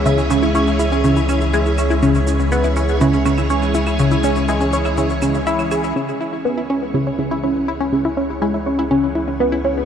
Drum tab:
SH |xxxxxxxxxxxxxxxx|xxxxxxxxxxxxxxxx|xxxxxxxxxxxxxxxx|----------------|
CL |----------x---x-|----------xx---x|-------x--x--xx-|----------------|

SH |----------------|
CL |----------------|